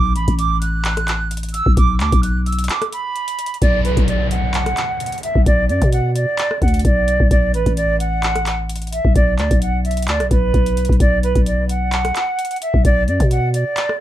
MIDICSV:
0, 0, Header, 1, 5, 480
1, 0, Start_track
1, 0, Key_signature, 2, "minor"
1, 0, Tempo, 461538
1, 1842, Time_signature, 4, 2, 24, 8
1, 14566, End_track
2, 0, Start_track
2, 0, Title_t, "Flute"
2, 0, Program_c, 0, 73
2, 0, Note_on_c, 0, 86, 99
2, 143, Note_off_c, 0, 86, 0
2, 165, Note_on_c, 0, 83, 88
2, 385, Note_off_c, 0, 83, 0
2, 400, Note_on_c, 0, 86, 95
2, 622, Note_off_c, 0, 86, 0
2, 641, Note_on_c, 0, 90, 86
2, 1368, Note_off_c, 0, 90, 0
2, 1600, Note_on_c, 0, 88, 86
2, 1822, Note_off_c, 0, 88, 0
2, 1842, Note_on_c, 0, 86, 109
2, 2063, Note_off_c, 0, 86, 0
2, 2081, Note_on_c, 0, 86, 78
2, 2302, Note_off_c, 0, 86, 0
2, 2323, Note_on_c, 0, 90, 80
2, 2543, Note_off_c, 0, 90, 0
2, 2562, Note_on_c, 0, 88, 66
2, 2783, Note_off_c, 0, 88, 0
2, 2802, Note_on_c, 0, 86, 84
2, 3023, Note_off_c, 0, 86, 0
2, 3043, Note_on_c, 0, 83, 85
2, 3721, Note_off_c, 0, 83, 0
2, 3763, Note_on_c, 0, 74, 108
2, 3983, Note_off_c, 0, 74, 0
2, 4002, Note_on_c, 0, 71, 82
2, 4223, Note_off_c, 0, 71, 0
2, 4243, Note_on_c, 0, 74, 76
2, 4463, Note_off_c, 0, 74, 0
2, 4481, Note_on_c, 0, 78, 81
2, 5400, Note_off_c, 0, 78, 0
2, 5442, Note_on_c, 0, 76, 87
2, 5663, Note_off_c, 0, 76, 0
2, 5683, Note_on_c, 0, 74, 111
2, 5903, Note_off_c, 0, 74, 0
2, 5921, Note_on_c, 0, 74, 79
2, 6142, Note_off_c, 0, 74, 0
2, 6163, Note_on_c, 0, 78, 85
2, 6384, Note_off_c, 0, 78, 0
2, 6402, Note_on_c, 0, 74, 83
2, 6853, Note_off_c, 0, 74, 0
2, 6884, Note_on_c, 0, 78, 89
2, 7104, Note_off_c, 0, 78, 0
2, 7123, Note_on_c, 0, 74, 91
2, 7574, Note_off_c, 0, 74, 0
2, 7602, Note_on_c, 0, 74, 99
2, 7823, Note_off_c, 0, 74, 0
2, 7846, Note_on_c, 0, 71, 82
2, 8065, Note_off_c, 0, 71, 0
2, 8080, Note_on_c, 0, 74, 93
2, 8302, Note_off_c, 0, 74, 0
2, 8321, Note_on_c, 0, 78, 81
2, 8975, Note_off_c, 0, 78, 0
2, 9280, Note_on_c, 0, 76, 82
2, 9502, Note_off_c, 0, 76, 0
2, 9522, Note_on_c, 0, 74, 101
2, 9743, Note_off_c, 0, 74, 0
2, 9761, Note_on_c, 0, 74, 74
2, 9982, Note_off_c, 0, 74, 0
2, 10003, Note_on_c, 0, 78, 75
2, 10223, Note_off_c, 0, 78, 0
2, 10243, Note_on_c, 0, 76, 63
2, 10463, Note_off_c, 0, 76, 0
2, 10482, Note_on_c, 0, 74, 82
2, 10703, Note_off_c, 0, 74, 0
2, 10723, Note_on_c, 0, 71, 84
2, 11401, Note_off_c, 0, 71, 0
2, 11444, Note_on_c, 0, 74, 111
2, 11664, Note_off_c, 0, 74, 0
2, 11682, Note_on_c, 0, 71, 82
2, 11903, Note_off_c, 0, 71, 0
2, 11923, Note_on_c, 0, 74, 78
2, 12143, Note_off_c, 0, 74, 0
2, 12162, Note_on_c, 0, 78, 81
2, 13080, Note_off_c, 0, 78, 0
2, 13122, Note_on_c, 0, 76, 83
2, 13343, Note_off_c, 0, 76, 0
2, 13364, Note_on_c, 0, 74, 109
2, 13584, Note_off_c, 0, 74, 0
2, 13601, Note_on_c, 0, 74, 80
2, 13822, Note_off_c, 0, 74, 0
2, 13843, Note_on_c, 0, 78, 87
2, 14063, Note_off_c, 0, 78, 0
2, 14081, Note_on_c, 0, 74, 81
2, 14533, Note_off_c, 0, 74, 0
2, 14566, End_track
3, 0, Start_track
3, 0, Title_t, "808-style bass"
3, 0, Program_c, 1, 38
3, 0, Note_on_c, 1, 35, 114
3, 162, Note_on_c, 1, 33, 99
3, 178, Note_off_c, 1, 35, 0
3, 283, Note_off_c, 1, 33, 0
3, 289, Note_on_c, 1, 33, 106
3, 1687, Note_off_c, 1, 33, 0
3, 1728, Note_on_c, 1, 35, 106
3, 1837, Note_off_c, 1, 35, 0
3, 1842, Note_on_c, 1, 35, 108
3, 2082, Note_on_c, 1, 38, 102
3, 2098, Note_off_c, 1, 35, 0
3, 2203, Note_off_c, 1, 38, 0
3, 2209, Note_on_c, 1, 35, 111
3, 2802, Note_off_c, 1, 35, 0
3, 3762, Note_on_c, 1, 35, 111
3, 4114, Note_off_c, 1, 35, 0
3, 4129, Note_on_c, 1, 35, 104
3, 4928, Note_off_c, 1, 35, 0
3, 5568, Note_on_c, 1, 35, 107
3, 5677, Note_off_c, 1, 35, 0
3, 5682, Note_on_c, 1, 35, 111
3, 5922, Note_on_c, 1, 42, 101
3, 5938, Note_off_c, 1, 35, 0
3, 6043, Note_off_c, 1, 42, 0
3, 6049, Note_on_c, 1, 47, 103
3, 6510, Note_off_c, 1, 47, 0
3, 6882, Note_on_c, 1, 38, 103
3, 7112, Note_off_c, 1, 38, 0
3, 7122, Note_on_c, 1, 35, 113
3, 7474, Note_off_c, 1, 35, 0
3, 7488, Note_on_c, 1, 35, 105
3, 7597, Note_off_c, 1, 35, 0
3, 7602, Note_on_c, 1, 35, 107
3, 7842, Note_on_c, 1, 33, 103
3, 7858, Note_off_c, 1, 35, 0
3, 7963, Note_off_c, 1, 33, 0
3, 7969, Note_on_c, 1, 33, 104
3, 9367, Note_off_c, 1, 33, 0
3, 9408, Note_on_c, 1, 35, 104
3, 9517, Note_off_c, 1, 35, 0
3, 9522, Note_on_c, 1, 35, 108
3, 9762, Note_on_c, 1, 38, 97
3, 9778, Note_off_c, 1, 35, 0
3, 9883, Note_off_c, 1, 38, 0
3, 9889, Note_on_c, 1, 35, 107
3, 10481, Note_on_c, 1, 38, 99
3, 10497, Note_off_c, 1, 35, 0
3, 10609, Note_on_c, 1, 35, 98
3, 10625, Note_off_c, 1, 38, 0
3, 10716, Note_off_c, 1, 35, 0
3, 10722, Note_on_c, 1, 35, 102
3, 10952, Note_off_c, 1, 35, 0
3, 10962, Note_on_c, 1, 35, 108
3, 11314, Note_off_c, 1, 35, 0
3, 11328, Note_on_c, 1, 35, 103
3, 11437, Note_off_c, 1, 35, 0
3, 11442, Note_on_c, 1, 35, 116
3, 11794, Note_off_c, 1, 35, 0
3, 11809, Note_on_c, 1, 35, 106
3, 12608, Note_off_c, 1, 35, 0
3, 13248, Note_on_c, 1, 35, 104
3, 13357, Note_off_c, 1, 35, 0
3, 13362, Note_on_c, 1, 35, 106
3, 13602, Note_on_c, 1, 42, 98
3, 13618, Note_off_c, 1, 35, 0
3, 13723, Note_off_c, 1, 42, 0
3, 13729, Note_on_c, 1, 47, 100
3, 14190, Note_off_c, 1, 47, 0
3, 14566, End_track
4, 0, Start_track
4, 0, Title_t, "Downlifter"
4, 0, Program_c, 2, 103
4, 3762, Note_on_c, 2, 60, 82
4, 7602, Note_off_c, 2, 60, 0
4, 14566, End_track
5, 0, Start_track
5, 0, Title_t, "Drums"
5, 162, Note_on_c, 9, 42, 63
5, 266, Note_off_c, 9, 42, 0
5, 289, Note_on_c, 9, 36, 91
5, 289, Note_on_c, 9, 42, 61
5, 393, Note_off_c, 9, 36, 0
5, 393, Note_off_c, 9, 42, 0
5, 402, Note_on_c, 9, 42, 85
5, 506, Note_off_c, 9, 42, 0
5, 642, Note_on_c, 9, 42, 79
5, 746, Note_off_c, 9, 42, 0
5, 881, Note_on_c, 9, 39, 123
5, 882, Note_on_c, 9, 42, 57
5, 985, Note_off_c, 9, 39, 0
5, 986, Note_off_c, 9, 42, 0
5, 1009, Note_on_c, 9, 37, 91
5, 1010, Note_on_c, 9, 42, 60
5, 1113, Note_off_c, 9, 37, 0
5, 1114, Note_off_c, 9, 42, 0
5, 1122, Note_on_c, 9, 39, 104
5, 1122, Note_on_c, 9, 42, 70
5, 1226, Note_off_c, 9, 39, 0
5, 1226, Note_off_c, 9, 42, 0
5, 1363, Note_on_c, 9, 42, 73
5, 1426, Note_off_c, 9, 42, 0
5, 1426, Note_on_c, 9, 42, 65
5, 1489, Note_off_c, 9, 42, 0
5, 1489, Note_on_c, 9, 42, 54
5, 1546, Note_off_c, 9, 42, 0
5, 1546, Note_on_c, 9, 42, 43
5, 1602, Note_off_c, 9, 42, 0
5, 1602, Note_on_c, 9, 42, 83
5, 1706, Note_off_c, 9, 42, 0
5, 1728, Note_on_c, 9, 36, 93
5, 1832, Note_off_c, 9, 36, 0
5, 1842, Note_on_c, 9, 36, 116
5, 1842, Note_on_c, 9, 42, 91
5, 1946, Note_off_c, 9, 36, 0
5, 1946, Note_off_c, 9, 42, 0
5, 2082, Note_on_c, 9, 39, 96
5, 2082, Note_on_c, 9, 42, 46
5, 2186, Note_off_c, 9, 39, 0
5, 2186, Note_off_c, 9, 42, 0
5, 2209, Note_on_c, 9, 36, 89
5, 2209, Note_on_c, 9, 42, 74
5, 2313, Note_off_c, 9, 36, 0
5, 2313, Note_off_c, 9, 42, 0
5, 2322, Note_on_c, 9, 42, 86
5, 2426, Note_off_c, 9, 42, 0
5, 2562, Note_on_c, 9, 42, 51
5, 2626, Note_off_c, 9, 42, 0
5, 2626, Note_on_c, 9, 42, 61
5, 2689, Note_off_c, 9, 42, 0
5, 2689, Note_on_c, 9, 42, 69
5, 2745, Note_off_c, 9, 42, 0
5, 2745, Note_on_c, 9, 42, 80
5, 2801, Note_on_c, 9, 39, 123
5, 2802, Note_off_c, 9, 42, 0
5, 2802, Note_on_c, 9, 42, 61
5, 2905, Note_off_c, 9, 39, 0
5, 2906, Note_off_c, 9, 42, 0
5, 2929, Note_on_c, 9, 37, 97
5, 2929, Note_on_c, 9, 42, 60
5, 3033, Note_off_c, 9, 37, 0
5, 3033, Note_off_c, 9, 42, 0
5, 3042, Note_on_c, 9, 42, 70
5, 3146, Note_off_c, 9, 42, 0
5, 3282, Note_on_c, 9, 42, 46
5, 3386, Note_off_c, 9, 42, 0
5, 3409, Note_on_c, 9, 42, 75
5, 3513, Note_off_c, 9, 42, 0
5, 3522, Note_on_c, 9, 42, 76
5, 3602, Note_off_c, 9, 42, 0
5, 3602, Note_on_c, 9, 42, 60
5, 3682, Note_off_c, 9, 42, 0
5, 3682, Note_on_c, 9, 42, 44
5, 3762, Note_off_c, 9, 42, 0
5, 3762, Note_on_c, 9, 36, 113
5, 3762, Note_on_c, 9, 42, 86
5, 3866, Note_off_c, 9, 36, 0
5, 3866, Note_off_c, 9, 42, 0
5, 4002, Note_on_c, 9, 42, 64
5, 4106, Note_off_c, 9, 42, 0
5, 4129, Note_on_c, 9, 36, 87
5, 4129, Note_on_c, 9, 42, 62
5, 4233, Note_off_c, 9, 36, 0
5, 4233, Note_off_c, 9, 42, 0
5, 4242, Note_on_c, 9, 42, 80
5, 4346, Note_off_c, 9, 42, 0
5, 4482, Note_on_c, 9, 42, 78
5, 4586, Note_off_c, 9, 42, 0
5, 4721, Note_on_c, 9, 39, 123
5, 4722, Note_on_c, 9, 42, 57
5, 4825, Note_off_c, 9, 39, 0
5, 4826, Note_off_c, 9, 42, 0
5, 4849, Note_on_c, 9, 37, 91
5, 4849, Note_on_c, 9, 42, 60
5, 4953, Note_off_c, 9, 37, 0
5, 4953, Note_off_c, 9, 42, 0
5, 4962, Note_on_c, 9, 39, 97
5, 4962, Note_on_c, 9, 42, 68
5, 5066, Note_off_c, 9, 39, 0
5, 5066, Note_off_c, 9, 42, 0
5, 5202, Note_on_c, 9, 42, 73
5, 5266, Note_off_c, 9, 42, 0
5, 5266, Note_on_c, 9, 42, 62
5, 5329, Note_off_c, 9, 42, 0
5, 5329, Note_on_c, 9, 42, 52
5, 5386, Note_off_c, 9, 42, 0
5, 5386, Note_on_c, 9, 42, 43
5, 5442, Note_off_c, 9, 42, 0
5, 5442, Note_on_c, 9, 42, 78
5, 5546, Note_off_c, 9, 42, 0
5, 5568, Note_on_c, 9, 36, 90
5, 5672, Note_off_c, 9, 36, 0
5, 5682, Note_on_c, 9, 36, 115
5, 5682, Note_on_c, 9, 42, 88
5, 5786, Note_off_c, 9, 36, 0
5, 5786, Note_off_c, 9, 42, 0
5, 5922, Note_on_c, 9, 42, 45
5, 6026, Note_off_c, 9, 42, 0
5, 6049, Note_on_c, 9, 36, 90
5, 6049, Note_on_c, 9, 42, 73
5, 6153, Note_off_c, 9, 36, 0
5, 6153, Note_off_c, 9, 42, 0
5, 6162, Note_on_c, 9, 42, 82
5, 6266, Note_off_c, 9, 42, 0
5, 6402, Note_on_c, 9, 42, 80
5, 6506, Note_off_c, 9, 42, 0
5, 6641, Note_on_c, 9, 39, 117
5, 6642, Note_on_c, 9, 42, 67
5, 6745, Note_off_c, 9, 39, 0
5, 6746, Note_off_c, 9, 42, 0
5, 6769, Note_on_c, 9, 37, 93
5, 6873, Note_off_c, 9, 37, 0
5, 6882, Note_on_c, 9, 36, 97
5, 6882, Note_on_c, 9, 42, 41
5, 6946, Note_off_c, 9, 42, 0
5, 6946, Note_on_c, 9, 42, 54
5, 6986, Note_off_c, 9, 36, 0
5, 7009, Note_off_c, 9, 42, 0
5, 7009, Note_on_c, 9, 42, 62
5, 7066, Note_off_c, 9, 42, 0
5, 7066, Note_on_c, 9, 42, 71
5, 7122, Note_off_c, 9, 42, 0
5, 7122, Note_on_c, 9, 36, 88
5, 7122, Note_on_c, 9, 42, 72
5, 7226, Note_off_c, 9, 36, 0
5, 7226, Note_off_c, 9, 42, 0
5, 7362, Note_on_c, 9, 42, 73
5, 7466, Note_off_c, 9, 42, 0
5, 7488, Note_on_c, 9, 36, 93
5, 7592, Note_off_c, 9, 36, 0
5, 7602, Note_on_c, 9, 36, 112
5, 7602, Note_on_c, 9, 42, 85
5, 7706, Note_off_c, 9, 36, 0
5, 7706, Note_off_c, 9, 42, 0
5, 7842, Note_on_c, 9, 42, 63
5, 7946, Note_off_c, 9, 42, 0
5, 7969, Note_on_c, 9, 36, 92
5, 7969, Note_on_c, 9, 42, 59
5, 8073, Note_off_c, 9, 36, 0
5, 8073, Note_off_c, 9, 42, 0
5, 8082, Note_on_c, 9, 42, 83
5, 8186, Note_off_c, 9, 42, 0
5, 8322, Note_on_c, 9, 42, 78
5, 8426, Note_off_c, 9, 42, 0
5, 8561, Note_on_c, 9, 39, 121
5, 8562, Note_on_c, 9, 42, 56
5, 8665, Note_off_c, 9, 39, 0
5, 8666, Note_off_c, 9, 42, 0
5, 8689, Note_on_c, 9, 37, 90
5, 8690, Note_on_c, 9, 42, 59
5, 8793, Note_off_c, 9, 37, 0
5, 8794, Note_off_c, 9, 42, 0
5, 8802, Note_on_c, 9, 39, 102
5, 8802, Note_on_c, 9, 42, 68
5, 8906, Note_off_c, 9, 39, 0
5, 8906, Note_off_c, 9, 42, 0
5, 9042, Note_on_c, 9, 42, 75
5, 9106, Note_off_c, 9, 42, 0
5, 9106, Note_on_c, 9, 42, 64
5, 9169, Note_off_c, 9, 42, 0
5, 9169, Note_on_c, 9, 42, 52
5, 9226, Note_off_c, 9, 42, 0
5, 9226, Note_on_c, 9, 42, 43
5, 9282, Note_off_c, 9, 42, 0
5, 9282, Note_on_c, 9, 42, 77
5, 9386, Note_off_c, 9, 42, 0
5, 9408, Note_on_c, 9, 36, 92
5, 9512, Note_off_c, 9, 36, 0
5, 9522, Note_on_c, 9, 36, 113
5, 9522, Note_on_c, 9, 42, 84
5, 9626, Note_off_c, 9, 36, 0
5, 9626, Note_off_c, 9, 42, 0
5, 9762, Note_on_c, 9, 39, 91
5, 9762, Note_on_c, 9, 42, 46
5, 9866, Note_off_c, 9, 39, 0
5, 9866, Note_off_c, 9, 42, 0
5, 9889, Note_on_c, 9, 36, 86
5, 9889, Note_on_c, 9, 42, 73
5, 9993, Note_off_c, 9, 36, 0
5, 9993, Note_off_c, 9, 42, 0
5, 10002, Note_on_c, 9, 42, 84
5, 10106, Note_off_c, 9, 42, 0
5, 10242, Note_on_c, 9, 42, 49
5, 10306, Note_off_c, 9, 42, 0
5, 10306, Note_on_c, 9, 42, 58
5, 10369, Note_off_c, 9, 42, 0
5, 10369, Note_on_c, 9, 42, 70
5, 10425, Note_off_c, 9, 42, 0
5, 10425, Note_on_c, 9, 42, 80
5, 10481, Note_on_c, 9, 39, 120
5, 10482, Note_off_c, 9, 42, 0
5, 10482, Note_on_c, 9, 42, 58
5, 10585, Note_off_c, 9, 39, 0
5, 10586, Note_off_c, 9, 42, 0
5, 10609, Note_on_c, 9, 37, 93
5, 10609, Note_on_c, 9, 42, 58
5, 10713, Note_off_c, 9, 37, 0
5, 10713, Note_off_c, 9, 42, 0
5, 10722, Note_on_c, 9, 36, 93
5, 10722, Note_on_c, 9, 42, 70
5, 10826, Note_off_c, 9, 36, 0
5, 10826, Note_off_c, 9, 42, 0
5, 10962, Note_on_c, 9, 36, 88
5, 10962, Note_on_c, 9, 42, 43
5, 11066, Note_off_c, 9, 36, 0
5, 11066, Note_off_c, 9, 42, 0
5, 11089, Note_on_c, 9, 42, 73
5, 11193, Note_off_c, 9, 42, 0
5, 11202, Note_on_c, 9, 42, 70
5, 11282, Note_off_c, 9, 42, 0
5, 11282, Note_on_c, 9, 42, 57
5, 11328, Note_on_c, 9, 36, 96
5, 11362, Note_off_c, 9, 42, 0
5, 11362, Note_on_c, 9, 42, 43
5, 11432, Note_off_c, 9, 36, 0
5, 11442, Note_off_c, 9, 42, 0
5, 11442, Note_on_c, 9, 36, 114
5, 11442, Note_on_c, 9, 42, 87
5, 11546, Note_off_c, 9, 36, 0
5, 11546, Note_off_c, 9, 42, 0
5, 11682, Note_on_c, 9, 42, 64
5, 11786, Note_off_c, 9, 42, 0
5, 11809, Note_on_c, 9, 36, 85
5, 11809, Note_on_c, 9, 42, 58
5, 11913, Note_off_c, 9, 36, 0
5, 11913, Note_off_c, 9, 42, 0
5, 11922, Note_on_c, 9, 42, 82
5, 12026, Note_off_c, 9, 42, 0
5, 12162, Note_on_c, 9, 42, 78
5, 12266, Note_off_c, 9, 42, 0
5, 12401, Note_on_c, 9, 39, 117
5, 12402, Note_on_c, 9, 42, 58
5, 12505, Note_off_c, 9, 39, 0
5, 12506, Note_off_c, 9, 42, 0
5, 12529, Note_on_c, 9, 37, 90
5, 12529, Note_on_c, 9, 42, 59
5, 12633, Note_off_c, 9, 37, 0
5, 12633, Note_off_c, 9, 42, 0
5, 12642, Note_on_c, 9, 39, 96
5, 12642, Note_on_c, 9, 42, 70
5, 12746, Note_off_c, 9, 39, 0
5, 12746, Note_off_c, 9, 42, 0
5, 12882, Note_on_c, 9, 42, 70
5, 12946, Note_off_c, 9, 42, 0
5, 12946, Note_on_c, 9, 42, 61
5, 13009, Note_off_c, 9, 42, 0
5, 13009, Note_on_c, 9, 42, 53
5, 13066, Note_off_c, 9, 42, 0
5, 13066, Note_on_c, 9, 42, 43
5, 13122, Note_off_c, 9, 42, 0
5, 13122, Note_on_c, 9, 42, 77
5, 13226, Note_off_c, 9, 42, 0
5, 13248, Note_on_c, 9, 36, 93
5, 13352, Note_off_c, 9, 36, 0
5, 13362, Note_on_c, 9, 36, 115
5, 13362, Note_on_c, 9, 42, 85
5, 13466, Note_off_c, 9, 36, 0
5, 13466, Note_off_c, 9, 42, 0
5, 13602, Note_on_c, 9, 42, 46
5, 13706, Note_off_c, 9, 42, 0
5, 13729, Note_on_c, 9, 36, 87
5, 13729, Note_on_c, 9, 42, 75
5, 13833, Note_off_c, 9, 36, 0
5, 13833, Note_off_c, 9, 42, 0
5, 13842, Note_on_c, 9, 42, 83
5, 13946, Note_off_c, 9, 42, 0
5, 14082, Note_on_c, 9, 42, 77
5, 14186, Note_off_c, 9, 42, 0
5, 14321, Note_on_c, 9, 39, 117
5, 14322, Note_on_c, 9, 42, 69
5, 14425, Note_off_c, 9, 39, 0
5, 14426, Note_off_c, 9, 42, 0
5, 14449, Note_on_c, 9, 37, 91
5, 14553, Note_off_c, 9, 37, 0
5, 14566, End_track
0, 0, End_of_file